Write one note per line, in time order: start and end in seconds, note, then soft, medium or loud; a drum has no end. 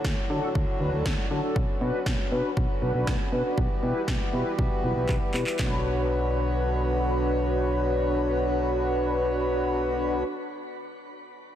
0.00 1.54 A2 medium
0.00 3.54 D3 medium
0.00 3.54 F#3 medium
0.00 1.54 D4 medium
0.00 5.55 F#4 medium
0.05 0.15 D2 medium
0.05 kick loud
0.05 snare loud
0.30 0.40 D3 loud
0.30 0.49 D4 medium
0.30 0.49 F#4 medium
0.30 0.49 A4 loud
0.55 0.65 D2 loud
0.55 kick loud
0.80 0.90 D2 medium
0.80 0.90 D4 medium
0.80 0.90 F#4 medium
0.80 0.90 B4 loud
0.93 1.03 D2 medium
0.93 1.12 D4 medium
0.93 1.12 F#4 medium
0.93 1.12 A4 medium
1.06 1.16 D2 medium
1.06 kick loud
1.06 snare loud
1.31 1.41 D3 loud
1.31 1.40 D4 medium
1.31 1.40 F#4 medium
1.31 1.40 A4 medium
1.43 1.56 D4 medium
1.43 1.56 F#4 medium
1.43 1.56 A4 medium
1.56 1.66 B1 loud
1.56 5.55 B3 medium
1.56 3.56 C#4 medium
1.56 kick loud
1.81 1.91 B2 loud
1.81 2.00 D4 medium
1.81 2.00 F#4 medium
1.81 2.00 B4 medium
2.06 2.16 B1 medium
2.06 kick loud
2.06 snare loud
2.32 2.42 B2 loud
2.32 2.50 D4 medium
2.32 2.50 F#4 medium
2.32 2.50 B4 loud
2.57 2.67 B1 loud
2.57 kick loud
2.82 2.92 B1 loud
2.82 2.91 D4 medium
2.82 2.91 F#4 medium
2.82 2.91 B4 loud
2.95 3.05 B1 loud
2.95 3.13 D4 medium
2.95 3.13 F#4 medium
2.95 3.13 B4 medium
3.07 3.17 B1 loud
3.07 kick loud
3.07 snare loud
3.32 3.42 B2 loud
3.32 3.42 D4 medium
3.32 3.42 F#4 medium
3.32 3.42 B4 medium
3.45 3.58 D4 medium
3.45 3.58 F#4 medium
3.45 3.58 B4 medium
3.58 3.68 B1 loud
3.58 5.57 E3 medium
3.58 5.57 G3 medium
3.58 5.57 G4 medium
3.58 kick loud
3.83 3.93 B2 loud
3.83 4.02 E4 medium
3.83 4.02 G4 medium
3.83 4.02 B4 medium
4.08 4.18 B1 loud
4.08 kick loud
4.08 snare loud
4.33 4.43 B2 loud
4.33 4.52 E4 medium
4.33 4.52 G4 medium
4.33 4.52 B4 medium
4.59 4.69 B1 loud
4.59 kick loud
4.84 4.94 B1 loud
4.84 4.93 E4 medium
4.84 4.93 G4 medium
4.84 4.93 B4 medium
4.96 5.06 B1 medium
4.96 5.15 E4 medium
4.96 5.15 G4 medium
4.96 5.15 B4 medium
5.09 5.19 B1 loud
5.09 kick loud
5.09 clap medium
5.34 5.44 B2 medium
5.34 5.43 E4 medium
5.34 5.43 G4 medium
5.34 5.43 B4 medium
5.34 clap medium
5.47 5.59 E4 medium
5.47 5.59 G4 medium
5.47 5.58 B4 medium
5.47 clap medium
5.59 10.23 B1 loud
5.59 10.23 D3 medium
5.59 10.23 F#3 medium
5.59 10.23 B3 medium
5.59 10.23 D4 medium
5.59 10.23 F#4 medium
5.59 10.23 B4 medium
5.59 10.23 C#5 medium
5.59 kick medium
5.59 snare loud
5.59 clap medium